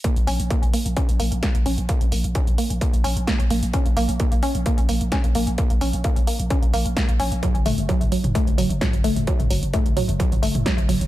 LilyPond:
<<
  \new Staff \with { instrumentName = "Synth arpeggio sound" } { \time 4/4 \key bes \minor \tempo 4 = 130 bes8 des'8 bes8 bes8 des'8 bes8 bes8 des'8 | bes8 bes8 des'8 bes8 bes8 des'8 bes8 bes8 | des'8 bes8 bes8 des'8 bes8 bes8 des'8 bes8 | bes8 des'8 bes8 bes8 des'8 bes8 bes8 des'8 |
ges8 a8 ges8 ges8 a8 ges8 ges8 a8 | ges8 ges8 a8 ges8 ges8 a8 ges8 ges8 | }
  \new Staff \with { instrumentName = "808-style bass" } { \clef bass \time 4/4 \key bes \minor r16 bes,,16 bes,,16 bes,,16 r16 bes,,16 r16 bes,,16 r16 bes,,16 bes,,16 bes,,16 r16 bes,,16 bes,,16 bes,,16 | r16 bes,,16 bes,,16 bes,,16 r16 bes,,16 r16 bes,,16 r16 bes,,16 bes,,16 bes,,16 r16 bes,,16 bes,,16 bes,,16 | r16 bes,,16 bes,,16 bes,,16 r16 bes,,16 r16 bes,,16 r16 bes,,16 bes,,16 bes,,16 r16 bes,,16 bes,,16 bes,,16 | r16 bes,,16 bes,,16 bes,,16 r16 bes,,16 r16 bes,,16 r16 bes,,16 bes,,16 bes,,16 r16 bes,,16 bes,,16 bes,,16 |
r16 ges,,16 ges,,16 ges,,16 r16 ges,,16 r16 ges,,16 r16 ges,,16 ges,,16 ges,,16 r16 ges,,16 ges,,16 ges,,16 | r16 ges,,16 ges,,16 ges,,16 r16 ges,,16 r16 ges,,16 r16 ges,,16 ges,,16 ges,,16 r16 ges,,16 ges,,16 ges,,16 | }
  \new DrumStaff \with { instrumentName = "Drums" } \drummode { \time 4/4 <hh bd>16 hh16 hho16 hh16 <hh bd>16 hh16 hho16 hh16 <hh bd>16 hh16 hho16 hh16 <hh bd sn>16 hh16 hho16 hh16 | <hh bd>16 hh16 hho16 hh16 <hh bd>16 hh16 hho16 hh16 <hh bd>16 hh16 hho16 hh16 <hh bd sn>16 hh16 hho16 hh16 | <hh bd>16 hh16 hho16 hh16 <hh bd>16 hh16 hho16 hh16 <hh bd>16 hh16 hho16 hh16 <hh bd sn>16 hh16 hho16 hh16 | <hh bd>16 hh16 hho16 hh16 <hh bd>16 hh16 hho16 hh16 <hh bd>16 hh16 hho16 hh16 <hh bd sn>16 hh16 hho16 hh16 |
<hh bd toml>16 hh16 <hho toml>16 hh16 <hh bd>16 <hh toml>16 hho16 <hh toml>16 <hh bd>16 hh16 <hho toml>16 hh16 <hh bd sn toml>16 hh16 hho16 <hh toml>16 | <hh bd>16 <hh toml>16 hho16 hh16 <hh bd toml>16 hh16 <hho toml>16 hh16 <hh bd>16 <hh toml>16 hho16 <hh toml>16 <hh bd sn>16 hh16 <hho toml>16 hh16 | }
>>